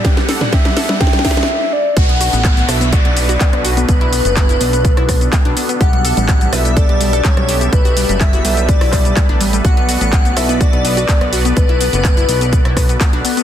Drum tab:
HH |x-x-o-x-x-x-o-x-x-x-o-x---------|x-x-o-x-x-x-o-x-x-x-o-x-x-x-o-x-|x-x-o-x-x-x-o-x-x-x-o-x-x-x-o-x-|x-x-o-x-x-x-o-x-x-x-o-x-x-x-o-x-|
SH |--------------------------------|x---x-x-x-x-x-x-x---x-x-x---x-x-|x---x-x-x-x-x-x-x---x-x-x---x-x-|x---x-x-x-x-x-x-x---x-x-x---x-x-|
CP |--------------------------------|--------x---------------x-------|--------x---------------x-------|--------x---------------x-------|
SD |o-o-o-o-o-o-o-o-oooooooo--------|------------r-------------r-----|------------------r-r-----------|------------r-------------r-----|
T2 |------o-------------------------|--------------------------------|--------------------------------|--------------------------------|
CG |--------------------o-----------|--------------------------------|--------------------------------|--------------------------------|
BD |o-------o-------o---o-----------|o-------o-------o-------o-------|o-------o-------o---o---o-------|o-------o-------o-------o-------|

HH |x-x-o-x-x-x-o-x-x-o-o-x-x-x-o-x-|x-x-o-x-x-x-o-x-x-x-o-x-x-x-o-x-|x-x-o-x-x-x-o-x-x-x-o-x-x-x-o-x-|
SH |x-x-x-x-x-x-x-x-x---x-x-x---x-x-|x---x-x-x-x-x-x-x---x-x-x---x-x-|x---x-x-x-x-x-x-x---x-x-x---x-x-|
CP |--------x-----------x---x-------|--------x---------------x-------|--------x---------------x-------|
SD |------------------r-r-----------|------------r-------------r-----|------------------r-r-----------|
T2 |--------------------------------|--------------------------------|--------------------------------|
CG |--------------------------------|--------------------------------|--------------------------------|
BD |o-------o-------o---o---o-------|o-------o-------o-------o-------|o-------o-------o---o---o-------|